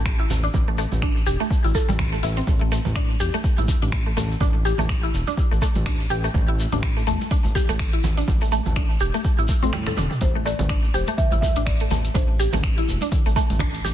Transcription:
Already playing: A1
0.06 finger snap, kick, shekere
0.19 E4
0.30 A1, muted conga, low conga, shekere
0.43 D4, shekere
0.54 A1, kick, high conga, low conga, shekere
0.68 A3, muted conga
0.78 A3, shekere
0.92 A1, high conga, low conga, shekere
1.02 D4, finger snap, kick, shekere
1.17 shekere
1.26 E1 G4, shekere
1.40 A3, muted conga, high conga, shekere
1.51 kick, shekere
1.64 A1 E4, shekere
1.75 A4, kick, high conga, shekere
1.88 A1 G3, muted conga, high conga, shekere
1.99 finger snap, kick, low conga, shekere
2.12 A3, shekere
2.23 A1 E4, muted conga, shekere
2.37 C4, shekere
2.47 A1, kick, high conga, low conga, shekere
2.61 A3, muted conga
2.72 A3, shekere
2.85 A1, high conga, low conga, shekere
2.95 D4, finger snap, kick, muted conga, shekere
3.10 shekere
3.20 E1 G4, shekere
3.34 A3, muted conga, high conga, shekere
3.44 kick, shekere
3.58 A1 E4, high conga, shekere
3.68 kick, low conga, shekere
3.82 A1 D4, muted conga, shekere
3.92 finger snap, kick, shekere
4.06 A3
4.17 A1 A3, muted conga, low conga, shekere
4.31 shekere
4.40 A1 D4, kick, high conga, low conga, shekere
4.55 muted conga
4.65 G4, shekere
4.78 A1 A3, high conga, low conga, shekere
4.89 finger snap, kick, shekere
5.03 E4, shekere
5.13 E1, shekere
5.27 D4, muted conga, high conga, shekere
5.37 kick, shekere
5.51 A1 A3, shekere
5.61 A3, kick, high conga, shekere
5.75 A1, muted conga, high conga, shekere
5.86 D4, finger snap, kick, low conga, shekere
6.00 shekere
6.10 A1 G4, muted conga, shekere
6.24 A3, shekere
6.34 A1, kick, high conga, low conga, shekere
6.48 E4, muted conga
6.59 shekere
6.72 A1 D4, high conga, low conga, shekere
6.83 finger snap, kick, muted conga, shekere
6.97 A3, shekere
7.07 E1 A3, shekere
7.20 muted conga, high conga, shekere
7.31 D4, kick, shekere
7.45 A1, high conga, shekere
7.55 G4, kick, low conga, shekere
7.69 A1 A3, muted conga, shekere
7.79 finger snap, kick, shekere
7.93 E4
8.03 A1, muted conga, low conga, shekere
8.17 D4, shekere
8.28 A1, kick, high conga, low conga, shekere
8.41 A3, muted conga, shekere
8.52 A3, shekere
8.65 A1, high conga, low conga, shekere
8.76 D4, finger snap, kick, muted conga, shekere
8.90 shekere
9.00 E1 G4, shekere
9.14 A3, muted conga, high conga, shekere
9.24 kick, shekere
9.38 A1 E4, shekere
9.48 kick, high conga, shekere
9.63 A2 C4, muted conga, high conga, shekere
9.73 G3, finger snap, high tom, low conga, shekere
9.87 A4, finger snap, high tom, low conga, shekere
9.97 E1 D4, mid tom, muted conga, shekere
10.11 mid tom, shekere
10.21 A1 C5, kick, closed hi-hat, high conga, low conga, shekere
10.35 A3, muted conga
10.46 A3 D5, shekere
10.59 A1, closed hi-hat, mid tom, high conga, low conga, shekere
10.69 D4, finger snap, kick, closed hi-hat, muted conga, shekere
10.84 shekere
10.94 E1 G4 C5, shekere
11.07 A3, closed hi-hat, muted conga, high conga, shekere
11.18 E5, kick, closed hi-hat, mid tom, shekere
11.32 A1 E4, high conga, shekere
11.41 E5, kick, low conga, shekere
11.56 A1 D4, closed hi-hat, muted conga, shekere
11.66 D5, finger snap, kick, closed hi-hat, shekere
11.80 A3, closed hi-hat
11.91 A1 A3, muted conga, low conga, shekere
12.05 closed hi-hat, shekere
12.14 A1 D4 C5, kick, closed hi-hat, high conga, low conga, shekere
12.28 muted conga
12.39 G4, shekere
12.53 A1 A3, closed hi-hat, mid tom, high conga, low conga, shekere
12.63 finger snap, kick, closed hi-hat, muted conga, shekere
12.78 E4, shekere
12.88 E1, shekere
13.01 D4, closed hi-hat, muted conga, high conga, shekere
13.12 kick, closed hi-hat, mid tom, shekere
13.26 A1 A3, shekere
13.36 A3, kick, high conga, shekere
13.50 A1, closed hi-hat, muted conga, high conga, shekere
13.59 D4, finger snap, kick, closed hi-hat, low conga, shekere
13.75 closed hi-hat, shekere
13.84 A1 G4, muted conga, shekere

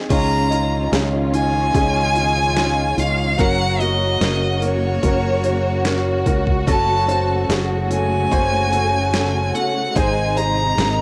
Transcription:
Already playing: C4 D#4 F4 G#4 A#4
0.09 C#2 C#3 D#3 C#4 D#4 F4 G#4 D#5 A#5, kick, open hi-hat, crash
0.50 C#4 D#4 F4 G#4 D#5, open hi-hat
0.92 C#2 C#4 D#4 G#4, snare, open hi-hat
1.33 C#4 D#4 F4 G#5, open hi-hat
1.73 C#2 C#4 D#4 F4 G#4, kick, open hi-hat
1.78 D#5
2.15 C#4 D#4 F4, open hi-hat
2.56 C#4 D#4 F4, snare, open hi-hat
2.98 C#2 C#4 D#4 F4 F5, open hi-hat
3.38 F#1 C#3 F#3 A#3 C#4 F#4 A#4 C#5 F#5, kick, open hi-hat
3.79 C#4 F#4 A#4 C#5 D#5, open hi-hat
4.20 F#1 C#4 F#4 A#4, snare, open hi-hat
4.62 C#4 F#4 A#4 C#5, open hi-hat
5.01 F#1 C#4 F#4 A#4, kick, open hi-hat
5.07 C#5
5.44 C#4 F#4 C#5, open hi-hat
5.85 C#4 F#4 A#4, snare, open hi-hat
6.26 C#2 C#4 F#4 A#4, kick, open hi-hat
6.47 kick
6.67 F#1 C#3 F#3 A3 C#4 F#4 A4 C#5 A5, kick, open hi-hat
7.08 C#4 F#4 A4 C5 C#5, open hi-hat
7.49 F#1 C#4 F#4 G#4, snare, open hi-hat
7.90 C#4 F#4 A4 G#5, open hi-hat
8.30 F#1 C#4 F#4 C5, kick, open hi-hat
8.34 A4 C#5
8.72 C#4 F#4 A4, open hi-hat
9.13 C#4 F#4 A4, snare, open hi-hat
9.54 C#4 F#4 A4 F#5, open hi-hat
9.95 G#1 G#2 C3 G#3 C4 D#4 G#4 C5 G#5, kick, open hi-hat
10.36 D#4 G#4 C5 A#5, open hi-hat
10.77 G#1 D#4 G#4 A#4, snare, open hi-hat

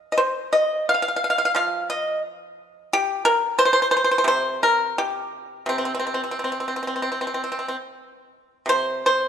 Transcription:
Already playing: F3
0.12 D#5
0.18 C5
0.53 D#5
0.89 F5
0.94 F5
1.02 F5
1.08 F5
1.16 F5
1.24 F5
1.30 F5
1.38 F5
1.45 F5
1.55 F3 F5
1.90 D#5
2.93 G4
3.25 A#4
3.59 C5
3.65 C5
3.73 C5
3.82 C5
3.91 C5
3.97 C5
4.04 C5
4.11 C5
4.18 C5
4.24 C3 C5
4.63 A#4
4.98 G4
5.66 C3 C4
5.78 C4
5.85 C4
5.95 C4
5.99 C4
6.07 C4
6.14 C4
6.24 C4
6.31 C4
6.39 C4
6.44 C4
6.52 C4
6.60 C4
6.68 C4
6.76 C4
6.83 C4
6.87 C4
6.96 C4
7.02 C4
7.12 C4
7.21 C4
7.27 C4
7.34 C4
7.44 C4
7.52 C4
7.59 C4
7.68 C4
8.66 C3 C5
9.06 C5

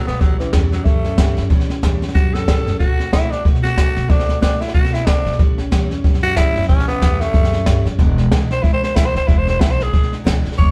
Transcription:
0.06 B2 A3 B3 C4 F#4, snare
0.19 A1 A2 E3 F#3 G3 C#4 E4, kick, snare
0.39 E3 G3 C#4 E4, snare
0.53 E2 A2 E3 G3 C#4 E4, kick, snare, hi-hat pedal
0.71 F#3 G3 C#4 E4, snare
0.85 F#2 E3 G3 A3 C#4 E4, kick, snare
1.04 G3 C#4 E4, snare
1.18 G2 A2 E3 G3 C#4 E4, kick, snare, hi-hat pedal
1.37 F#2 G3 C#4 E4, snare
1.50 A1 A2 E3 G3 C#4 E4, kick, snare
1.60 snare
1.69 G3 C#4 E4, snare
1.82 E2 A2 E3 G3 C#4 E4, kick, snare, hi-hat pedal
2.01 G3 C#4 E4, snare
2.08 snare
2.14 F#2 E3 G3 C#4 E4 F#4, kick, snare
2.33 G3 C#4 E4 A4, snare
2.46 G2 A2 E3 G3 C#4 E4, kick, snare, hi-hat pedal
2.65 F#2 G3 C#4 E4, snare
2.79 D2 D3 A3 C4 F#4, kick, snare
2.97 A3 C4 F#4, snare
3.11 A2 D3 A3 C4 E4 F#4, kick, snare, hi-hat pedal
3.29 A3 C4 D4 F#4, snare
3.44 B2 D3 A3 C4 F#4, kick, snare
3.55 snare
3.62 A3 C4 F#4, snare
3.76 C3 D3 A3 C4 F#4, kick, snare, hi-hat pedal
3.95 B2 A3 C4 F#4, snare
4.08 D2 D3 A3 C4 D4 F#4, kick, snare
4.19 snare
4.27 A3 C4 F#4, snare
4.40 A2 D3 A3 C4 D4 F#4, kick, snare, hi-hat pedal
4.60 A3 C4 E4 F#4, snare
4.68 snare
4.73 B2 D3 A3 C4 F#4, kick, snare
4.85 snare
4.93 A3 C4 E4 F#4, snare
5.06 C3 D3 A3 C4 D4 F#4, kick, snare, hi-hat pedal
5.25 B2 A3 C4 F#4, snare
5.33 snare
5.38 A1 A2 E3 G3 C#4 E4, kick, snare
5.58 G3 C#4 E4, snare
5.71 E2 A2 E3 G3 C#4 E4, kick, snare, hi-hat pedal
5.89 G3 C#4 E4, snare
6.04 F#2 E3 G3 C#4 E4, kick, snare
6.14 snare
6.22 G3 C#4 E4 F#4, snare
6.36 G2 A2 E3 G3 C#4 E4, kick, snare, hi-hat pedal
6.56 F#2 G3 C#4, snare
6.63 snare
6.68 A1 A2 E3 G3 C#4 E4, kick, snare
6.79 snare
6.88 G3 B3 C#4 E4, snare
7.01 E2 A2 E3 G3 C#4 E4, kick, snare, hi-hat pedal
7.20 G3 A3 C#4 E4, snare
7.33 F#2 E3 G3 C#4 E4, kick, snare
7.44 snare
7.53 G3 C#4 E4, snare
7.66 G2 A2 E3 G3 C#4 E4, kick, snare, hi-hat pedal
7.85 F#2 G3 C#4 E4, snare
7.99 E1 E2 B2 E3 G#3 D4 E4, kick, snare
8.18 E3 G#3 D4 E4, snare
8.31 E2 B2 E3 G#3 D4 E4, kick, snare, hi-hat pedal
8.50 E3 G#3 D4 E4 C5, snare
8.62 C#2 E3 G#3 D4 E4, kick, snare
8.73 C5
8.82 E3 G#3 D4 E4 C5, snare
8.94 D2 E2 B2 E3 G#3 D4 E4, kick, snare, hi-hat pedal
9.06 C5
9.13 C#2 E3 G#3 D4 E4 C5, snare
9.27 E1 E2 B2 E3 G#3 D4 E4, kick, snare
9.38 C5
9.46 E3 G#3 D4 E4, snare
9.50 C5
9.59 B1 E2 B2 E3 G#3 D4 E4, kick, snare, hi-hat pedal
9.71 C5
9.77 E3 G#3 D4 E4, snare
9.83 G#4
9.92 C#2 E3 G#3 D4 E4, kick, snare
10.03 snare
10.11 E3 G#3 D4 E4, snare
10.24 D2 E2 B2 E3 G#3 D4 E4, kick, snare, hi-hat pedal
10.44 C#2 E3 G#3 D4 E4, snare
10.52 snare
10.57 E1 E2 B2 E3 G#3 D4 E4 C#5, kick, snare

